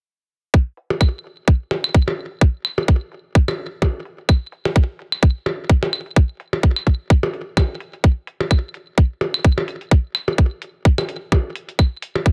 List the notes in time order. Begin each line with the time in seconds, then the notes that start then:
0.54 kick
0.77 open hi-hat
0.90 percussion blips
1.01 kick, claves
1.24 open hi-hat
1.48 kick
1.71 open hi-hat, percussion blips
1.84 claves
1.94 kick
2.08 percussion blips
2.18 open hi-hat
2.31 open hi-hat
2.41 kick
2.65 open hi-hat, claves
2.78 percussion blips
2.88 kick
3.12 open hi-hat
3.35 kick
3.48 percussion blips, claves
3.59 open hi-hat
3.82 kick, percussion blips
4.05 open hi-hat
4.19 open hi-hat
4.29 kick, claves
4.52 open hi-hat
4.65 percussion blips
4.76 kick
4.99 open hi-hat
5.12 claves
5.23 kick
5.46 open hi-hat, percussion blips
5.70 kick
5.83 percussion blips
5.93 open hi-hat, claves
6.06 open hi-hat
6.16 kick
6.40 open hi-hat
6.53 percussion blips
6.63 kick
6.76 claves
6.87 kick, open hi-hat
7.10 kick
7.23 percussion blips
7.34 open hi-hat
7.57 kick, percussion blips, claves
7.80 open hi-hat
7.94 open hi-hat
8.04 kick
8.27 open hi-hat
8.40 percussion blips
8.51 kick, claves
8.74 open hi-hat
8.98 kick
9.21 open hi-hat, percussion blips
9.34 claves
9.45 kick
9.58 percussion blips
9.68 open hi-hat
9.81 open hi-hat
9.91 kick
10.15 open hi-hat, claves
10.28 percussion blips
10.38 kick
10.62 open hi-hat
10.85 kick
10.98 percussion blips, claves
11.09 open hi-hat
11.32 kick, percussion blips
11.56 open hi-hat
11.69 open hi-hat
11.79 kick, claves
12.02 open hi-hat
12.15 percussion blips
12.26 kick